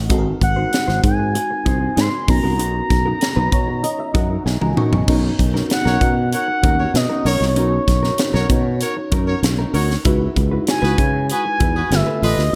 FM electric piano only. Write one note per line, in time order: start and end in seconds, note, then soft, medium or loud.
0.00 0.12 D#5 medium
0.00 0.12 F#5 medium
0.00 0.13 A#5 medium
0.09 2.24 G#3 medium
0.09 2.24 C4 medium
0.09 2.25 D#4 medium
0.09 2.25 F#4 medium
0.09 0.17 A4 medium
0.18 2.28 A#4 medium
2.28 4.73 B3 medium
2.28 4.73 C#4 medium
2.28 4.74 D#4 medium
2.28 4.74 F#4 medium
2.28 4.74 A#4 medium
3.53 3.82 C#5 medium
3.84 3.98 D#5 medium
4.00 4.14 E5 medium
4.15 4.44 F#5 medium
4.46 4.61 G#5 medium
4.62 4.76 A#5 medium
4.77 5.06 B3 medium
4.77 5.07 C#4 medium
4.77 5.07 D#4 medium
4.77 5.08 F#4 soft
4.77 5.09 A#4 medium
4.77 5.06 C#6 medium
5.08 7.53 B3 medium
5.08 7.53 C#4 medium
5.08 7.53 D#4 medium
5.08 7.54 F#4 medium
5.08 7.54 A#4 medium
7.56 10.01 B3 medium
7.56 10.01 C#4 medium
7.56 10.02 D#4 medium
7.56 10.02 F#4 medium
7.56 10.02 A#4 medium
10.05 11.88 G#3 medium
10.05 11.88 D#4 medium
10.05 11.88 E4 medium
10.05 11.88 F#4 medium
10.05 11.89 B4 medium
11.92 12.54 D3 medium
11.92 12.54 A3 medium
11.92 12.54 F4 medium
11.92 12.54 G4 medium
11.92 12.55 B4 medium